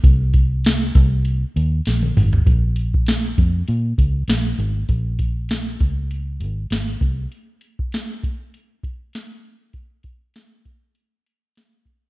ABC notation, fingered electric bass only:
X:1
M:4/4
L:1/8
Q:"Swing 16ths" 1/4=99
K:Bbm
V:1 name="Fingered electric bass" clef=bass
C,,3 C,,2 E,, B,,, A,,, | B,,,3 F,, B,, D,, B,,, A,,, | B,,,3 D,,2 A,,, A,,, C,, | z8 |
z8 |]